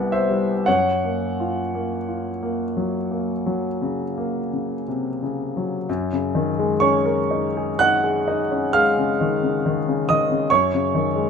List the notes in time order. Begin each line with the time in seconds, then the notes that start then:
Already playing: C2 G3 B3 D5 F#5
0.12 C5 E5
0.30 G3
0.66 F#2 C#5 F#5
1.04 A#3
1.40 F4
1.75 A#3
2.08 F4
2.43 A#3
2.77 F#3
3.11 A#3
3.46 F#3
3.81 C#3
4.18 A#3
4.53 C#3
4.88 C3
5.23 C#3
5.57 F#3
5.89 F#2
6.13 C#3
6.35 D#3
6.59 G#3
6.80 C#4 C#5 C#6
7.06 A#4
7.31 D#4
7.57 G#4
7.79 D#4 F#5 F#6
8.04 G#4
8.28 D#4
8.51 C#4
8.73 G#3 F5 F6
8.98 C#3
9.21 D#3
9.43 C#3
9.66 D#3
9.88 C#3
10.09 D#3 D#5 D#6
10.30 C#3
10.50 F#2 C#5 C#6
10.74 C#3
10.95 D#3
11.16 G#3